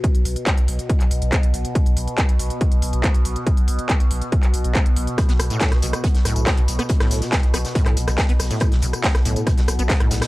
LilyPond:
<<
  \new Staff \with { instrumentName = "Acid bass" } { \clef bass \time 4/4 \key a \mixolydian \tempo 4 = 140 r1 | r1 | r1 | r16 b16 r16 a,8 b,16 b,16 r16 b16 r16 a,8 b,16 b,16 r16 b16 |
r16 a,8 b,16 b,16 r16 b16 r16 a,8 b,16 b,16 r16 b16 r16 a,16~ | a,16 b,16 b,16 r16 b16 r16 a,8 b,16 b,16 r16 b16 r16 a,8 b,16 | }
  \new Staff \with { instrumentName = "Synth drone" } { \clef bass \time 4/4 \key a \mixolydian b,1~ | b,1~ | b,1~ | b,1~ |
b,1~ | b,1 | }
  \new Staff \with { instrumentName = "Sub bass" } { \clef bass \time 4/4 \key a \mixolydian r16 b,,16 b,,16 r8 b,,16 b,,16 r8 b,,16 b,,16 b,,16 r16 b,,16 b,,16 r16 | r16 b,,16 b,,16 r8 b,,16 b,,16 r8 b,,16 b,,16 b,,16 r16 b,,16 b,,16 r16 | r16 b,,16 b,,16 r8 b,,16 b,,16 r8 b,,16 b,,16 b,,16 r16 b,,16 b,,16 r16 | r16 b,,16 b,,16 r8 b,,16 b,,16 r8 b,,16 b,,16 b,,16 r16 b,,16 b,,16 r16 |
r16 b,,16 b,,16 r8 b,,16 b,,16 r8 b,,16 b,,16 b,,16 r16 b,,16 b,,16 r16 | r16 b,,16 b,,16 r8 b,,16 b,,16 r8 b,,16 b,,16 b,,16 r16 b,,16 b,,16 r16 | }
  \new DrumStaff \with { instrumentName = "Drums" } \drummode { \time 4/4 <hh bd>16 hh16 hho16 hh16 <hc hh bd>16 hh16 hho16 hh16 <hh bd>16 <hc hh>16 hho16 hh16 <hc hh bd>16 hh16 hho16 hh16 | <hh bd>16 hh16 hho16 hh16 <hc hh bd>16 hh16 hho16 hh16 <hh bd>16 hh16 hho16 hh16 <hc hh bd>16 hh16 hho16 hh16 | <hh bd>16 hh16 hho16 hh16 <hc hh bd>16 hh16 hho16 hh16 <hh bd>16 <hc hh>16 hho16 hh16 <hc hh bd>16 hh16 hho16 hh16 | <hh bd ss tamb>16 <hh sn>16 <hh hho ss tamb>16 <hh tamb>16 <hc hh bd sn tamb>16 <hh ss sn>16 <hh hho tamb>16 <hh ss tamb>16 <hh bd tamb>16 <hh sn>16 <hh hho ss tamb>16 <hh tamb>16 <hc hh bd ss sn tamb>16 hh16 <hh hho tamb>16 <hh ss tamb>16 |
<hh bd tamb>16 <hh ss sn>16 <hh hho sn tamb>16 <hh sn tamb>16 <hc hh bd ss sn tamb>16 hh16 <hh hho ss tamb>16 <hh sn tamb>16 <hh bd tamb>16 <hc hh ss>16 <hh hho tamb>16 <hh ss tamb>16 <hc hh bd sn tamb>16 hh16 <hho ss tamb>16 <hh tamb>16 | <hh bd ss tamb>16 <hh sn>16 <hh hho tamb>16 <hh ss tamb>16 <hc hh bd sn tamb>16 <hh ss sn>16 <hh hho tamb>16 <hh tamb>16 <hh bd ss tamb>16 <hh sn>16 <hh hho ss tamb>16 <hh tamb>16 <hc hh bd sn tamb>16 <hh ss>16 <hh hho sn tamb>16 <hh ss sn tamb>16 | }
>>